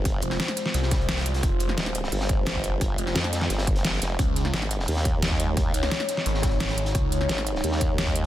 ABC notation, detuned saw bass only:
X:1
M:4/4
L:1/8
Q:1/4=174
K:Fm
V:1 name="Detuned saw bass" clef=bass
z F,,, z2 C,,4 | F,,,2 z6 | z F,,, z6 | D,,2 z6 |
z D,, z2 A,,,4 | D,,2 z6 |]